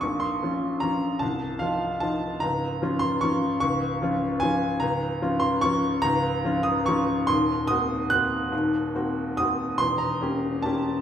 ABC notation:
X:1
M:3/4
L:1/8
Q:1/4=148
K:Bbdor
V:1 name="Upright piano"
d' c'3 b2 | =a2 f2 a2 | b3 c' d'2 | d'3 z a2 |
[K:Bbm] b3 c' d'2 | b3 e' d'2 | c'2 e'2 g'2- | g'4 e'2 |
c' b3 =a2 |]
V:2 name="Upright piano"
[B,,,B,,]2 [F,DF]2 [F,DF]2 | [C,,,C,,]2 [F,EF]2 [F,EF]2 | [D,,,D,,]2 [F,DF]2 [F,DF]2 | [D,,,D,,]2 [F,DF]2 [F,DF]2 |
[K:Bbm] [D,,,D,,]2 [F,DF]2 [F,DF]2 | [D,,,D,,]2 [F,DF]2 [F,DF]2 | [E,,,E,,]2 [B,CG]2 [B,CG]2 | [E,,,E,,]2 [B,CG]2 [B,CG]2 |
[=E,,,=E,,]2 [B,^C=G]2 [B,CG]2 |]